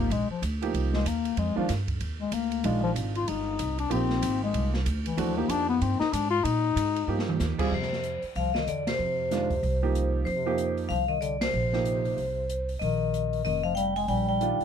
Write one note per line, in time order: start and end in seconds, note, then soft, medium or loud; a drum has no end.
0.00 0.13 A#3 loud
0.10 0.28 A#1 medium
0.10 0.30 G#3 medium
0.10 ride medium
0.30 0.42 F3 medium
0.30 muted upright bass stroke soft
0.42 0.73 D2 medium
0.42 hi-hat pedal medium
0.42 ride medium
0.62 1.03 F3 medium
0.62 1.04 A#3 medium
0.62 1.04 D#4 medium
0.62 1.04 G4 medium
0.62 ride soft
0.74 1.04 C2 medium
0.74 ride medium
0.93 1.09 G#3 medium
0.93 snare soft
1.05 1.36 D#2 medium
1.05 1.40 A#3 medium
1.05 hi-hat pedal medium
1.05 ride medium
1.25 ride soft
1.37 1.55 F2 medium
1.37 1.57 G#3 medium
1.37 ride medium
1.56 1.67 D#3 medium
1.56 1.69 F3 medium
1.56 1.68 G#3 medium
1.56 1.68 D4 medium
1.56 1.68 F4 medium
1.56 muted upright bass stroke soft
1.68 2.00 G2 medium
1.68 snare soft
1.68 hi-hat pedal medium
1.68 ride medium
1.88 kick soft
1.88 ride soft
2.00 2.31 D#2 medium
2.00 ride medium
2.21 2.35 G#3 medium
2.32 2.63 D2 medium
2.32 2.67 A#3 loud
2.32 hi-hat pedal soft
2.32 ride medium
2.52 ride soft
2.64 2.95 A#1 medium
2.64 3.52 D#3 medium
2.64 3.52 G#3 medium
2.64 2.83 G#3 medium
2.64 3.52 D4 medium
2.64 3.52 F4 medium
2.64 ride medium
2.83 2.91 F3 medium
2.96 3.27 G#1 medium
2.96 hi-hat pedal medium
2.96 ride medium
3.15 3.30 F4 medium
3.15 ride soft
3.28 3.58 G1 medium
3.28 3.79 D#4 medium
3.28 ride medium
3.59 3.90 C2 medium
3.59 hi-hat pedal medium
3.59 ride medium
3.78 3.93 D4 medium
3.78 ride soft
3.90 4.22 A#1 medium
3.90 4.78 F3 medium
3.90 4.78 A#3 medium
3.90 4.43 C4 loud
3.90 4.78 D#4 medium
3.90 4.79 G4 medium
3.90 ride medium
4.10 snare soft
4.22 4.53 G#1 medium
4.22 hi-hat pedal medium
4.22 ride medium
4.44 4.73 G#3 medium
4.54 4.85 C2 medium
4.54 ride medium
4.74 snare medium
4.86 5.17 D2 medium
4.86 hi-hat pedal medium
4.86 ride medium
5.06 5.21 E3 medium
5.06 ride soft
5.17 5.48 D#2 loud
5.17 5.35 E3 medium
5.17 5.39 F3 medium
5.17 5.35 A3 medium
5.17 5.35 D4 medium
5.17 5.35 F#4 medium
5.17 ride medium
5.37 6.06 F3 medium
5.37 6.05 A#3 medium
5.37 5.52 A#3 medium
5.37 6.06 D#4 medium
5.37 6.06 G4 medium
5.49 5.80 F2 medium
5.49 5.68 D4 medium
5.49 hi-hat pedal medium
5.49 ride medium
5.69 5.84 B3 loud
5.81 5.99 G2 medium
5.81 5.99 C4 medium
5.81 ride medium
6.00 6.14 D#4 loud
6.00 muted upright bass stroke soft
6.00 snare medium
6.13 6.44 G#2 medium
6.13 6.30 D4 medium
6.13 hi-hat pedal medium
6.13 ride medium
6.30 6.46 F4 loud
6.44 6.75 A#2 medium
6.44 7.40 D#4 loud
6.44 ride medium
6.76 7.07 G#2 medium
6.76 hi-hat pedal medium
6.76 ride medium
6.96 ride soft
7.08 7.39 G2 medium
7.08 7.55 F3 medium
7.08 7.56 A#3 medium
7.08 7.56 D#4 medium
7.08 7.56 G4 medium
7.19 snare medium
7.29 mid tom medium
7.40 7.58 D#2 medium
7.40 snare medium
7.40 hi-hat pedal medium
7.58 7.70 G3 medium
7.58 7.70 C4 medium
7.58 7.71 F4 medium
7.58 7.70 G#4 medium
7.58 muted upright bass stroke soft
7.58 kick medium
7.58 crash medium
7.71 8.19 F2 medium
7.71 8.19 C3 medium
7.71 8.21 C5 medium
7.82 snare soft
7.93 snare soft
8.03 closed hi-hat soft
8.22 muted upright bass stroke soft
8.22 open hi-hat soft
8.35 8.65 C2 medium
8.35 8.54 F3 medium
8.35 8.54 F5 medium
8.35 open hi-hat soft
8.54 8.66 D#3 medium
8.54 8.66 D#5 medium
8.54 snare medium
8.66 8.97 E2 medium
8.66 8.85 D3 medium
8.66 8.86 D5 medium
8.66 closed hi-hat medium
8.86 10.10 C3 medium
8.86 10.11 C5 medium
8.86 snare medium
8.86 ride medium
8.99 9.60 F2 medium
9.31 9.49 D#3 medium
9.31 9.49 G#3 medium
9.31 9.49 D4 medium
9.31 9.49 F4 medium
9.31 snare soft
9.31 closed hi-hat soft
9.50 kick soft
9.50 open hi-hat soft
9.63 10.23 C2 medium
9.63 open hi-hat soft
9.83 10.24 F3 medium
9.83 10.25 A#3 medium
9.83 10.25 D#4 medium
9.83 10.25 G4 medium
9.95 closed hi-hat medium
10.24 10.87 F2 medium
10.24 10.73 C3 medium
10.24 10.74 C5 medium
10.24 open hi-hat soft
10.46 10.88 F3 medium
10.46 10.88 A#3 medium
10.46 10.88 D#4 medium
10.46 10.88 G4 medium
10.58 closed hi-hat soft
10.77 open hi-hat soft
10.87 11.51 C2 medium
10.87 11.07 F3 medium
10.87 11.10 F5 medium
10.87 open hi-hat soft
11.07 11.20 D#3 medium
11.07 11.22 D#5 medium
11.20 11.39 D3 medium
11.20 11.40 D5 medium
11.20 closed hi-hat soft
11.40 12.64 C3 medium
11.40 12.65 C5 medium
11.40 snare medium
11.40 ride medium
11.54 12.15 A#1 medium
11.73 12.15 F3 medium
11.73 12.16 A#3 medium
11.73 12.16 D#4 medium
11.73 12.16 G4 medium
11.73 snare soft
11.85 closed hi-hat soft
12.05 open hi-hat soft
12.17 12.78 C2 medium
12.17 open hi-hat soft
12.50 closed hi-hat medium
12.69 open hi-hat soft
12.79 13.42 A#1 medium
12.79 13.40 D#3 medium
12.79 13.41 D#5 medium
12.79 open hi-hat soft
13.14 closed hi-hat soft
13.33 open hi-hat soft
13.44 14.06 F1 medium
13.44 13.63 D#3 medium
13.44 13.63 D#5 medium
13.44 open hi-hat soft
13.63 13.75 F3 medium
13.63 13.77 F5 medium
13.75 13.95 G3 medium
13.75 13.96 G5 medium
13.75 closed hi-hat medium
13.96 14.08 G#3 medium
13.96 14.08 G#5 medium
13.96 open hi-hat soft
14.08 14.57 A#1 medium
14.08 14.27 G3 medium
14.08 14.27 G5 medium
14.08 open hi-hat soft
14.28 14.65 G3 medium
14.28 14.65 G5 medium
14.41 14.65 D#3 medium
14.41 14.65 G3 medium
14.41 14.65 D4 medium
14.41 14.65 F4 medium
14.41 closed hi-hat medium
14.59 muted upright bass stroke soft
14.59 open hi-hat soft